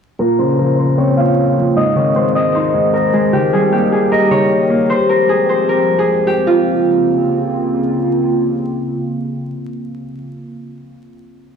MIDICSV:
0, 0, Header, 1, 4, 480
1, 0, Start_track
1, 0, Tempo, 392157
1, 237, Time_signature, 4, 2, 24, 8
1, 14153, End_track
2, 0, Start_track
2, 0, Title_t, "Harp"
2, 0, Program_c, 0, 46
2, 234, Note_on_c, 0, 70, 96
2, 474, Note_on_c, 0, 72, 78
2, 714, Note_off_c, 0, 70, 0
2, 719, Note_on_c, 0, 70, 83
2, 957, Note_off_c, 0, 72, 0
2, 962, Note_on_c, 0, 72, 75
2, 1201, Note_on_c, 0, 73, 85
2, 1274, Note_off_c, 0, 72, 0
2, 1435, Note_on_c, 0, 77, 82
2, 2159, Note_on_c, 0, 75, 85
2, 2388, Note_off_c, 0, 73, 0
2, 2393, Note_on_c, 0, 73, 83
2, 2637, Note_on_c, 0, 72, 82
2, 2710, Note_off_c, 0, 73, 0
2, 2872, Note_off_c, 0, 75, 0
2, 2877, Note_on_c, 0, 75, 78
2, 3116, Note_off_c, 0, 72, 0
2, 3121, Note_on_c, 0, 72, 87
2, 3316, Note_off_c, 0, 70, 0
2, 3472, Note_off_c, 0, 77, 0
2, 3592, Note_on_c, 0, 70, 90
2, 3836, Note_on_c, 0, 68, 71
2, 4075, Note_on_c, 0, 67, 100
2, 4148, Note_off_c, 0, 68, 0
2, 4321, Note_on_c, 0, 68, 86
2, 4395, Note_off_c, 0, 67, 0
2, 4557, Note_on_c, 0, 67, 82
2, 4631, Note_off_c, 0, 68, 0
2, 4799, Note_on_c, 0, 68, 82
2, 4873, Note_off_c, 0, 67, 0
2, 5033, Note_off_c, 0, 70, 0
2, 5038, Note_on_c, 0, 70, 87
2, 5061, Note_off_c, 0, 75, 0
2, 5277, Note_on_c, 0, 73, 84
2, 5350, Note_off_c, 0, 72, 0
2, 5994, Note_on_c, 0, 72, 94
2, 6068, Note_off_c, 0, 73, 0
2, 6229, Note_off_c, 0, 70, 0
2, 6234, Note_on_c, 0, 70, 81
2, 6471, Note_off_c, 0, 68, 0
2, 6476, Note_on_c, 0, 68, 78
2, 6717, Note_off_c, 0, 72, 0
2, 6722, Note_on_c, 0, 72, 76
2, 6957, Note_off_c, 0, 70, 0
2, 6962, Note_on_c, 0, 70, 77
2, 7324, Note_off_c, 0, 68, 0
2, 7328, Note_on_c, 0, 68, 69
2, 7675, Note_on_c, 0, 67, 80
2, 7749, Note_off_c, 0, 68, 0
2, 7919, Note_on_c, 0, 65, 81
2, 9144, Note_off_c, 0, 72, 0
2, 9558, Note_off_c, 0, 70, 0
2, 10556, Note_off_c, 0, 67, 0
2, 11007, Note_off_c, 0, 65, 0
2, 14153, End_track
3, 0, Start_track
3, 0, Title_t, "Analog synth pad"
3, 0, Program_c, 1, 89
3, 236, Note_on_c, 1, 49, 77
3, 236, Note_on_c, 1, 58, 71
3, 236, Note_on_c, 1, 60, 71
3, 236, Note_on_c, 1, 65, 87
3, 2137, Note_off_c, 1, 49, 0
3, 2137, Note_off_c, 1, 58, 0
3, 2137, Note_off_c, 1, 65, 0
3, 2157, Note_on_c, 1, 51, 80
3, 2157, Note_on_c, 1, 56, 72
3, 2157, Note_on_c, 1, 68, 88
3, 4038, Note_off_c, 1, 60, 0
3, 4058, Note_off_c, 1, 56, 0
3, 4058, Note_off_c, 1, 68, 0
3, 4078, Note_on_c, 1, 55, 71
3, 4078, Note_on_c, 1, 58, 71
3, 4078, Note_on_c, 1, 67, 85
3, 5958, Note_off_c, 1, 51, 0
3, 5978, Note_off_c, 1, 55, 0
3, 5978, Note_off_c, 1, 58, 0
3, 5979, Note_off_c, 1, 67, 0
3, 5997, Note_on_c, 1, 56, 73
3, 5998, Note_on_c, 1, 53, 77
3, 5998, Note_on_c, 1, 60, 72
3, 5999, Note_on_c, 1, 67, 90
3, 7898, Note_off_c, 1, 53, 0
3, 7898, Note_off_c, 1, 56, 0
3, 7898, Note_off_c, 1, 60, 0
3, 7899, Note_off_c, 1, 67, 0
3, 7917, Note_on_c, 1, 49, 79
3, 7917, Note_on_c, 1, 60, 74
3, 7918, Note_on_c, 1, 58, 73
3, 7918, Note_on_c, 1, 65, 85
3, 12515, Note_off_c, 1, 49, 0
3, 12515, Note_off_c, 1, 60, 0
3, 12516, Note_off_c, 1, 58, 0
3, 12516, Note_off_c, 1, 65, 0
3, 14153, End_track
4, 0, Start_track
4, 0, Title_t, "Grand piano"
4, 0, Program_c, 2, 0
4, 235, Note_on_c, 2, 46, 86
4, 461, Control_c, 2, 64, 127
4, 477, Note_on_c, 2, 49, 73
4, 718, Note_on_c, 2, 53, 71
4, 1196, Note_on_c, 2, 60, 81
4, 1418, Note_off_c, 2, 46, 0
4, 1437, Note_on_c, 2, 46, 73
4, 1677, Note_off_c, 2, 49, 0
4, 1901, Note_off_c, 2, 53, 0
4, 1920, Note_on_c, 2, 53, 73
4, 2154, Note_on_c, 2, 44, 85
4, 2157, Note_off_c, 2, 46, 0
4, 2157, Note_off_c, 2, 60, 0
4, 2158, Note_off_c, 2, 53, 0
4, 2173, Control_c, 2, 64, 0
4, 2393, Note_on_c, 2, 51, 79
4, 2399, Control_c, 2, 64, 127
4, 2640, Note_on_c, 2, 56, 80
4, 3116, Note_on_c, 2, 63, 82
4, 3336, Note_off_c, 2, 44, 0
4, 3354, Note_on_c, 2, 44, 72
4, 3595, Note_off_c, 2, 51, 0
4, 3818, Note_off_c, 2, 56, 0
4, 3836, Note_on_c, 2, 56, 83
4, 4076, Note_off_c, 2, 44, 0
4, 4077, Note_off_c, 2, 56, 0
4, 4077, Note_off_c, 2, 63, 0
4, 4078, Note_on_c, 2, 51, 84
4, 4094, Control_c, 2, 64, 0
4, 4318, Note_on_c, 2, 55, 77
4, 4322, Control_c, 2, 64, 127
4, 4557, Note_on_c, 2, 58, 78
4, 5041, Note_on_c, 2, 75, 86
4, 5257, Note_off_c, 2, 51, 0
4, 5275, Note_on_c, 2, 51, 68
4, 5518, Note_off_c, 2, 55, 0
4, 5737, Note_off_c, 2, 58, 0
4, 5755, Note_on_c, 2, 58, 78
4, 5996, Note_off_c, 2, 51, 0
4, 5996, Note_off_c, 2, 58, 0
4, 5999, Note_off_c, 2, 75, 0
4, 6014, Control_c, 2, 64, 0
4, 14153, End_track
0, 0, End_of_file